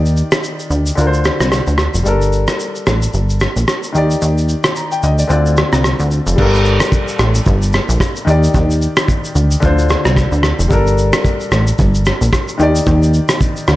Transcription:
Already playing: analog synth bass D#2, grand piano D#3 D#4 G4 D5
0.06 shaker
0.17 shaker
0.32 cross-stick, shaker
0.44 shaker
0.60 shaker
0.70 analog synth bass D2, shaker
0.86 shaker
0.95 analog synth bass D2, grand piano D3 D4 F4, shaker
1.00 grand piano A#4
1.07 grand piano C5
1.14 shaker
1.24 cross-stick, shaker
1.40 analog synth bass C2, cross-stick, shaker
1.52 cross-stick, shaker
1.67 analog synth bass D2, shaker
1.78 cross-stick, shaker
1.94 analog synth bass F1, shaker
2.03 analog synth bass G1, grand piano G3 D4 A4, shaker
2.08 grand piano A#4
2.22 shaker
2.33 shaker
2.48 cross-stick, shaker
2.60 shaker
2.76 shaker
2.87 analog synth bass A1, cross-stick, shaker
3.02 shaker
3.14 analog synth bass G1, shaker
3.30 shaker
3.40 cross-stick, shaker
3.56 analog synth bass A#1, shaker
3.68 cross-stick, shaker
3.83 shaker
3.92 analog synth bass D#2, grand piano D#3 D#4 G4, shaker
3.97 grand piano D5
4.11 shaker
4.22 analog synth bass D#2, shaker
4.38 shaker
4.49 shaker
4.64 cross-stick, shaker
4.76 grand piano A#5, shaker
4.92 grand piano G5, shaker
5.03 analog synth bass D2, grand piano D#5, shaker
5.19 grand piano D5, shaker
5.27 analog synth bass D2, grand piano D3 C4 F4, shaker
5.32 grand piano D5
5.46 shaker
5.57 cross-stick, shaker
5.73 analog synth bass C2, cross-stick, shaker
5.84 cross-stick, shaker
6.00 analog synth bass D2, shaker
6.11 shaker
6.27 analog synth bass F1, shaker
6.36 analog synth bass G1, grand piano G3 D4 A4, kick, crash
6.41 grand piano A#4
6.54 shaker
6.65 shaker
6.80 cross-stick, shaker
6.92 kick, shaker
7.08 shaker
7.19 analog synth bass A1, cross-stick, shaker
7.35 shaker
7.46 analog synth bass G1, kick, shaker
7.62 shaker
7.73 cross-stick, shaker
7.89 analog synth bass A#1, shaker
8.00 kick, cross-stick, shaker
8.16 shaker
8.25 analog synth bass D#2, grand piano D#3 D#4 G4, shaker
8.30 grand piano D5
8.44 shaker
8.54 analog synth bass D#2, kick, shaker
8.71 shaker
8.82 shaker
8.97 cross-stick, shaker
9.08 kick, shaker
9.24 shaker
9.35 analog synth bass D2, shaker
9.51 shaker
9.60 analog synth bass D2, grand piano D3 D4 F4, kick, shaker
9.65 grand piano C5
9.79 shaker
9.89 cross-stick, shaker
10.05 analog synth bass C2, cross-stick, shaker
10.17 kick, cross-stick, shaker
10.32 analog synth bass D2, shaker
10.43 cross-stick, shaker
10.59 analog synth bass F1, shaker
10.68 analog synth bass G1, grand piano G3 D4 A4, kick, shaker
10.73 grand piano A#4
10.87 shaker
10.98 shaker
11.13 cross-stick, shaker
11.25 kick, shaker
11.40 shaker
11.51 analog synth bass A1, cross-stick, shaker
11.67 shaker
11.79 analog synth bass G1, kick, shaker
11.95 shaker
12.06 cross-stick, shaker
12.21 analog synth bass A#1, shaker
12.33 kick, cross-stick, shaker
12.48 shaker
12.58 analog synth bass D#2, grand piano D#3 D#4 G4, shaker
12.63 grand piano D5
12.76 shaker
12.87 analog synth bass D#2, kick, shaker
13.03 shaker
13.14 shaker
13.29 cross-stick, shaker
13.41 kick, shaker
13.57 shaker
13.68 analog synth bass D2, cross-stick, shaker

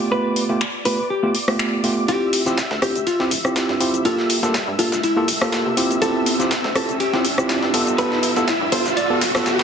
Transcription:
Already playing: analog synth pad D5 D6
0.11 tine electric piano A3 B3 F4 G4, hollow-body jazz guitar B4
0.36 open hi-hat
0.49 tine electric piano A3 B3 F4 G4
0.61 finger snap
0.85 tine electric piano A3 B3 F4 G4, hollow-body jazz guitar B4, open hi-hat
1.10 hollow-body jazz guitar G4
1.23 tine electric piano A3 B3 F4 G4
1.35 open hi-hat
1.48 tine electric piano A3 B3 F4 G4, cross-stick, open hi-hat
1.59 finger snap
1.83 tine electric piano A3 B3 F4 G4, open hi-hat
2.08 analog synth bass D2, tine electric piano C4 E4 F4 G4, hollow-body jazz guitar G4, analog synth pad E5 E6, closed hi-hat, ride, riser, shaker
2.33 open hi-hat, ride, shaker
2.46 analog synth bass A1, tine electric piano C4 E4 F4 G4, snare, closed hi-hat, shaker
2.57 snare, closed hi-hat, ride, shaker
2.71 analog synth bass D2, snare
2.82 analog synth bass D2, tine electric piano C4 E4 F4 G4, hollow-body jazz guitar G4, cross-stick, open hi-hat, ride, shaker
2.95 analog synth bass D2, closed hi-hat, shaker
3.07 hollow-body jazz guitar F4, closed hi-hat, ride, shaker
3.20 tine electric piano C4 E4 F4 G4, snare
3.31 analog synth bass D1, open hi-hat, ride, shaker
3.44 tine electric piano C4 E4 F4 G4, cross-stick, closed hi-hat, shaker
3.56 snare, closed hi-hat, ride, shaker
3.69 analog synth bass G2, snare
3.80 tine electric piano C4 E4 F4 G4, open hi-hat, ride, shaker
3.94 analog synth bass D1, closed hi-hat, shaker
4.05 analog synth bass G2, tine electric piano A#3 F4 G4 A4, hollow-body jazz guitar F4, closed hi-hat, ride, shaker
4.18 snare
4.30 open hi-hat, ride, shaker
4.43 analog synth bass D2, tine electric piano A#3 F4 G4 A4, snare, closed hi-hat, shaker
4.54 snare, closed hi-hat, ride, shaker
4.68 analog synth bass G2
4.78 analog synth bass G2, tine electric piano A#3 F4 G4 A4, hollow-body jazz guitar F4, open hi-hat, ride, shaker
4.92 analog synth bass G2, snare, closed hi-hat, shaker
5.03 hollow-body jazz guitar E4, closed hi-hat, ride, shaker
5.17 tine electric piano A#3 F4 G4 A4
5.28 analog synth bass G1, open hi-hat, ride, shaker
5.41 tine electric piano A#3 F4 G4 A4, cross-stick, snare, open hi-hat, shaker
5.53 snare, closed hi-hat, ride, shaker
5.66 analog synth bass C3
5.77 tine electric piano C4 E4 F4 G4, open hi-hat, ride, shaker
5.91 analog synth bass D1, closed hi-hat, ride, shaker
6.01 analog synth bass D2, tine electric piano C4 E4 F4 G4, hollow-body jazz guitar A4, closed hi-hat, ride, shaker
6.26 open hi-hat, ride, shaker
6.39 analog synth bass A1, tine electric piano C4 E4 F4 G4, snare, closed hi-hat, shaker
6.51 snare, closed hi-hat, ride, shaker
6.64 analog synth bass D2, snare
6.75 analog synth bass D2, tine electric piano C4 E4 F4 G4, hollow-body jazz guitar A4, cross-stick, open hi-hat, ride, shaker
6.89 analog synth bass D2, closed hi-hat, shaker
7.00 hollow-body jazz guitar G4, closed hi-hat, ride, shaker
7.13 tine electric piano C4 E4 F4 G4, snare
7.25 analog synth bass D1, open hi-hat, ride, shaker
7.38 tine electric piano C4 E4 F4 G4, cross-stick, closed hi-hat, shaker
7.49 snare, closed hi-hat, ride, shaker
7.63 analog synth bass G2, snare
7.74 tine electric piano B3 F4 G4 A4, open hi-hat, ride, shaker
7.87 analog synth bass G1, closed hi-hat, shaker
7.98 analog synth bass G2, tine electric piano B3 F4 G4 A4, hollow-body jazz guitar B4, closed hi-hat, ride, shaker
8.12 snare
8.23 open hi-hat, ride, shaker
8.36 analog synth bass D2, tine electric piano B3 F4 G4 A4, snare, closed hi-hat, shaker
8.48 snare, closed hi-hat, ride, shaker
8.61 analog synth bass G2
8.72 analog synth bass G2, tine electric piano B3 F4 G4 A4, hollow-body jazz guitar C5, open hi-hat, ride, shaker
8.86 analog synth bass G2, snare, closed hi-hat, shaker
8.97 hollow-body jazz guitar D5, closed hi-hat, ride, shaker
9.10 tine electric piano B3 F4 G4 A4
9.21 analog synth bass G1, snare, open hi-hat, ride, shaker
9.34 tine electric piano B3 F4 G4 A4, cross-stick, snare, open hi-hat, ride, shaker
9.46 snare, closed hi-hat, ride, shaker
9.59 analog synth bass B2, snare, ride

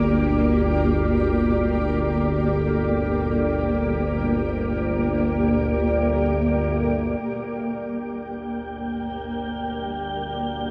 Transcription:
Already playing: synth drone G1 D2, ambient pad A#3 G4 D5, synth texture D5
7.19 synth drone G1 D2, ambient pad A#3, synth texture G5
7.69 ambient pad G4
8.55 ambient pad D5

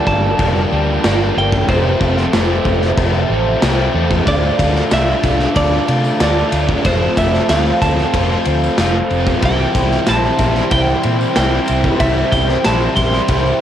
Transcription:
Already playing: overdriven electric guitar D3 G3 A#3 D4, ambient pad F4 A#4 G5 A5
0.07 fingered electric bass G1, clean electric guitar A5, kick
0.37 fingered electric bass F1, overdriven electric guitar G2 D3 G3 A#3 D4, kick, crash
0.72 fingered electric bass D2, overdriven electric guitar G3 A#3 D4
1.03 fingered electric bass G1, overdriven electric guitar D3 G3 A#3 D4, snare, tambourine, crash
1.36 fingered electric bass G1, overdriven electric guitar G3 A#3 D4, clean electric guitar G5
1.52 kick
1.68 fingered electric bass F1, overdriven electric guitar F2 C3 F3 A3 C4, ambient pad C5 E5, clean electric guitar C5, kick, crash
2.00 fingered electric bass F1, overdriven electric guitar F3 A3 C4, kick
2.17 snare
2.32 fingered electric bass F1, overdriven electric guitar C3 F3 A3 C4, snare, tambourine, crash
2.65 fingered electric bass F1, kick
2.82 snare
2.97 fingered electric bass F1, overdriven electric guitar F2 C3 F3 A3 C4, kick, crash
3.29 fingered electric bass A1, overdriven electric guitar F3 A3 C4
3.62 fingered electric bass C2, overdriven electric guitar C3 F3 A3 C4, snare, tambourine, crash
3.93 fingered electric bass E2, overdriven electric guitar F3 A3 C4
4.11 kick
4.26 fingered electric bass D2, overdriven electric guitar D3 A3 D4 F4, ambient pad F4 D5 E5 A5, clean electric guitar D5, kick, ride
4.59 fingered electric bass D2, kick, ride, tambourine
4.76 snare
4.91 fingered electric bass C2, overdriven electric guitar D3 A3 D4 F4, clean electric guitar E5, snare, ride, tambourine
5.07 tambourine
5.23 fingered electric bass C2, overdriven electric guitar A3 D4 F4, kick, ride, tambourine
5.39 snare
5.55 fingered electric bass D2, overdriven electric guitar D3 A3 D4 F4, clean electric guitar D5, kick, ride
5.87 fingered electric bass C3, overdriven electric guitar A3 D4 F4, ride, tambourine
6.04 tambourine
6.20 fingered electric bass D2, overdriven electric guitar D3 A3 D4 F4, clean electric guitar D5, snare, ride, tambourine
6.52 fingered electric bass D2, overdriven electric guitar A3 D4 F4, ride, tambourine
6.69 kick, tambourine
6.85 fingered electric bass F1, overdriven electric guitar F3 A3 C4 F4, clean electric guitar C5, ambient pad C5 G5, kick, ride
7.17 fingered electric bass F1, clean electric guitar E5, kick, ride, tambourine
7.33 snare
7.49 fingered electric bass D2, overdriven electric guitar F3 A3 C4 F4, clean electric guitar F5, snare, ride, tambourine
7.66 tambourine
7.82 fingered electric bass D2, overdriven electric guitar A3 C4 F4, clean electric guitar A5, kick, ride, tambourine
7.98 snare
8.14 fingered electric bass F1, overdriven electric guitar F3 A3 C4 F4, kick, ride
8.45 fingered electric bass D2, overdriven electric guitar A3 C4 F4, ride, tambourine
8.63 tambourine
8.78 fingered electric bass F1, overdriven electric guitar F3 A3 C4 F4, snare, ride, tambourine
9.10 fingered electric bass F1, overdriven electric guitar A3 C4 F4, ride, tambourine
9.27 kick, tambourine
9.42 fingered electric bass C2, overdriven electric guitar C3 E3 G3 C4 E4, ambient pad E4 C5 G5 C6, clean electric guitar G5, kick, ride
9.75 fingered electric bass C2, kick, ride, tambourine
9.91 snare
10.06 fingered electric bass A#1, overdriven electric guitar E3 G3 C4 E4, clean electric guitar A5, snare, ride, tambourine
10.24 tambourine
10.38 fingered electric bass A#1, overdriven electric guitar G3 C4 E4, kick, ride, tambourine
10.55 snare
10.70 fingered electric bass C2, overdriven electric guitar C3 E3 G3 C4 E4, clean electric guitar G5, kick, ride
11.03 fingered electric bass A#2, overdriven electric guitar G3 C4 E4, ride, tambourine
11.21 tambourine
11.36 fingered electric bass C2, overdriven electric guitar E3 G3 C4 E4, clean electric guitar G5, snare, ride, tambourine
11.67 fingered electric bass C2, overdriven electric guitar G3 C4 E4, ride, tambourine
11.84 kick, tambourine
12.00 fingered electric bass C2, overdriven electric guitar C3 E3 G3 C4 E4, clean electric guitar E5, kick, ride, tambourine
12.32 fingered electric bass C2, clean electric guitar G5, kick, ride, tambourine
12.48 snare, tambourine
12.64 fingered electric bass A#1, overdriven electric guitar E3 G3 C4 E4, clean electric guitar A5, snare, ride, tambourine
12.81 tambourine
12.96 fingered electric bass A#1, overdriven electric guitar G3 C4 E4, clean electric guitar C6, kick, ride, tambourine
13.13 snare, tambourine
13.28 fingered electric bass C2, overdriven electric guitar C3 E3 G3 C4 E4, kick, ride
13.45 tambourine

